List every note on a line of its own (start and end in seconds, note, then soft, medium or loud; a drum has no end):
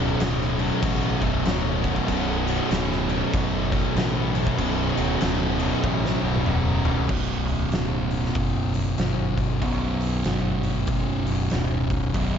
0.00 0.15 D1 medium
0.00 0.18 B1 medium
0.00 2.07 B1 medium
0.00 0.18 F#2 medium
0.00 2.07 F#2 loud
0.00 0.20 B2 loud
0.00 2.09 B2 loud
0.19 0.70 D1 medium
0.19 0.58 B1 medium
0.19 0.58 F#2 medium
0.19 0.59 B2 medium
0.19 snare loud
0.19 crash medium
0.41 snare soft
0.58 0.82 B1 medium
0.58 0.81 F#2 medium
0.58 0.83 B2 loud
0.58 crash medium
0.82 1.14 A1 loud
0.82 1.21 B1 medium
0.82 1.20 F#2 loud
0.82 1.22 B2 medium
0.82 kick loud
0.82 crash loud
1.21 1.41 B0 loud
1.21 1.44 B1 medium
1.21 1.44 F#2 loud
1.21 1.45 B2 loud
1.21 kick medium
1.21 crash medium
1.44 1.95 D1 loud
1.44 1.83 B1 medium
1.44 1.82 F#2 loud
1.44 1.84 B2 loud
1.44 snare loud
1.44 crash medium
1.83 2.06 B1 medium
1.83 2.06 F#2 medium
1.83 2.08 B2 medium
1.83 kick medium
1.83 crash medium
1.96 kick medium
2.07 2.58 B0 loud
2.07 2.45 B1 medium
2.07 4.57 B1 medium
2.07 2.45 F#2 medium
2.07 4.58 F#2 loud
2.07 2.46 B2 loud
2.07 4.60 B2 loud
2.07 kick loud
2.07 crash medium
2.46 2.70 B1 medium
2.46 2.69 F#2 medium
2.46 2.71 B2 loud
2.46 crash medium
2.70 3.21 D1 medium
2.70 3.08 B1 medium
2.70 3.08 F#2 loud
2.70 3.09 B2 loud
2.70 snare loud
2.70 crash medium
2.92 snare soft
3.09 3.33 B1 loud
3.09 3.33 F#2 loud
3.09 3.34 B2 loud
3.09 crash medium
3.33 3.84 F#1 loud
3.33 3.70 B1 loud
3.33 3.70 F#2 loud
3.33 3.72 B2 medium
3.33 kick loud
3.33 crash medium
3.71 3.94 B1 medium
3.71 3.94 F#2 medium
3.71 3.95 B2 medium
3.71 kick medium
3.71 crash medium
3.94 4.46 A1 loud
3.94 4.33 B1 loud
3.94 4.33 F#2 loud
3.94 4.34 B2 loud
3.94 snare loud
3.94 crash medium
4.34 4.57 B1 medium
4.34 4.57 F#2 medium
4.34 4.58 B2 loud
4.34 crash medium
4.47 kick loud
4.58 4.90 B0 loud
4.58 7.08 B1 medium
4.58 4.95 B1 medium
4.58 4.95 F#2 loud
4.58 7.08 F#2 loud
4.58 4.96 B2 loud
4.58 7.09 B2 loud
4.58 kick loud
4.58 crash medium
4.96 5.16 D1 loud
4.96 5.19 B1 medium
4.96 5.20 F#2 medium
4.96 5.20 B2 loud
4.96 crash medium
5.21 5.72 D1 medium
5.21 5.58 B1 medium
5.21 5.59 F#2 medium
5.21 5.59 B2 loud
5.21 snare loud
5.21 crash medium
5.59 5.82 B1 loud
5.59 5.83 F#2 loud
5.59 5.83 B2 loud
5.59 crash medium
5.83 6.15 A1 medium
5.83 6.21 B1 medium
5.83 6.21 F#2 medium
5.83 6.22 B2 medium
5.83 kick loud
6.05 snare medium
6.22 6.42 B0 loud
6.22 6.44 B1 medium
6.22 6.45 F#2 medium
6.22 6.45 B2 loud
6.35 mid tom medium
6.45 6.97 D1 loud
6.45 6.83 B1 medium
6.45 6.83 F#2 medium
6.45 6.84 B2 medium
6.45 mid tom medium
6.84 7.07 B1 medium
6.84 7.08 F#2 loud
6.84 7.08 B2 loud
6.84 floor tom loud
6.96 floor tom loud
7.09 7.45 B0 medium
7.09 8.77 B1 medium
7.09 8.73 F#2 medium
7.09 8.74 B2 medium
7.09 kick loud
7.09 crash loud
7.48 7.70 D1 medium
7.48 open hi-hat soft
7.72 8.31 D1 medium
7.72 snare loud
7.72 open hi-hat medium
8.11 open hi-hat medium
8.25 snare soft
8.35 8.94 F#1 loud
8.35 kick loud
8.35 open hi-hat medium
8.74 8.97 B1 medium
8.74 8.98 F#2 medium
8.74 9.00 B2 medium
8.74 open hi-hat medium
8.97 9.57 G1 medium
8.97 9.61 B1 medium
8.97 9.60 F#2 medium
8.97 9.63 B2 medium
8.97 snare loud
8.97 open hi-hat medium
9.37 kick medium
9.37 open hi-hat medium
9.61 11.29 B1 medium
9.61 10.21 B1 medium
9.61 11.25 F#2 medium
9.61 11.26 B2 medium
9.61 kick loud
9.61 open hi-hat medium
10.01 open hi-hat medium
10.24 10.84 G1 medium
10.24 snare loud
10.24 open hi-hat medium
10.63 open hi-hat medium
10.87 11.47 F#1 loud
10.87 kick loud
10.87 open hi-hat medium
11.27 11.50 B1 medium
11.27 11.50 F#2 medium
11.27 11.53 B2 medium
11.27 open hi-hat medium
11.50 12.11 D1 medium
11.50 12.13 B1 medium
11.50 12.13 F#2 medium
11.50 12.16 B2 medium
11.50 snare loud
11.50 open hi-hat medium
11.90 kick medium
11.90 open hi-hat medium
12.13 12.38 B0 medium
12.13 12.38 B1 medium
12.13 12.38 F#2 loud
12.13 12.38 B2 loud
12.13 kick loud
12.13 open hi-hat medium